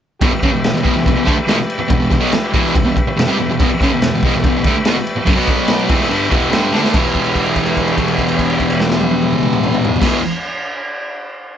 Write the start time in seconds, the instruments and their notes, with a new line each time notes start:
0.19 distorted electric guitar E2 B2, transistor combo organ G4 B4 E5, kick, crash
0.33 muted distorted electric guitar stroke
0.43 distorted electric guitar F#2 C#3, kick, crash
0.53 distorted electric guitar E2 B2
0.64 snare, crash
0.75 distorted electric guitar E2 B2
0.84 distorted electric guitar E2 B2, kick, crash
0.97 distorted electric guitar E2 B2, snare
1.06 distorted electric guitar E2 B2, kick, crash
1.17 distorted electric guitar E2 B2
1.26 distorted electric guitar D3 A3, kick, crash
1.37 muted distorted electric guitar stroke
1.48 distorted electric guitar E2 B2, snare, crash
1.58 muted distorted electric guitar stroke
1.70 crash
1.79 muted distorted electric guitar stroke
1.88 distorted electric guitar E2 B2, kick, crash
1.99 distorted electric guitar E2 B2
2.11 distorted electric guitar E2 B2, kick, snare, crash
2.20 distorted electric guitar B2 F#3
2.32 muted distorted electric guitar stroke, snare, crash
2.54 distorted electric guitar E2 B2 E3, kick, crash
2.66 snare
2.75 distorted electric guitar E2 B2, kick, crash
2.85 distorted electric guitar E2 B2
2.96 muted distorted electric guitar stroke, kick, crash
3.07 muted distorted electric guitar stroke
3.17 distorted electric guitar E2 B2, snare, crash
3.27 distorted electric guitar C3 G3
3.38 distorted electric guitar E2 B2, crash
3.50 distorted electric guitar E2 B2
3.56 transistor combo organ G4 B4 E5, kick
3.60 distorted electric guitar E2 B2, crash
3.72 muted distorted electric guitar stroke
3.81 distorted electric guitar F#2 C#3, kick, snare, crash
3.93 distorted electric guitar E2 B2
4.02 snare, crash
4.15 distorted electric guitar E2 B2
4.23 distorted electric guitar E2 B2, kick, crash
4.34 distorted electric guitar E2 B2, snare
4.44 distorted electric guitar E2 B2, kick, crash
4.57 distorted electric guitar E2 B2
4.64 distorted electric guitar D3 A3, kick, crash
4.76 muted distorted electric guitar stroke
4.85 distorted electric guitar E2 B2, snare, crash
4.96 muted distorted electric guitar stroke
5.07 crash
5.17 muted distorted electric guitar stroke
5.26 distorted electric guitar F#2 C#3, kick, crash
5.36 distorted electric guitar B2 F#3 B3, transistor combo organ F#4 B4 F#5
5.47 kick, snare, crash
5.68 snare, crash
5.87 distorted electric guitar E2 B2 E3, transistor combo organ G4 B4 E5, kick, crash
6.01 snare
6.09 distorted electric guitar G2 D3 G3, crash
6.30 distorted electric guitar E2 B2 E3, kick, crash
6.51 distorted electric guitar G2 D3 G3, snare, crash
6.72 distorted electric guitar D3 A3 D4, snare
6.84 snare
6.92 distorted electric guitar E2 B2 E3, transistor combo organ G4 B4 E5, kick, crash
7.15 kick, crash
7.25 crash
7.35 kick, crash
7.46 crash
7.56 kick, crash
7.66 crash
7.77 kick, crash
7.88 crash
7.98 kick, crash
8.08 crash
8.18 kick, crash
8.28 crash
8.39 kick, crash
8.50 crash
8.60 kick, crash
8.70 crash
8.80 snare
8.91 snare
9.01 high tom
9.11 high tom
9.22 high tom
9.33 mid tom
9.43 mid tom
9.53 mid tom
9.64 mid tom
9.74 mid tom
9.85 floor tom
9.96 distorted electric guitar E2, floor tom
10.02 distorted electric guitar B2 E3, transistor combo organ G4 B4 E5, kick, snare, crash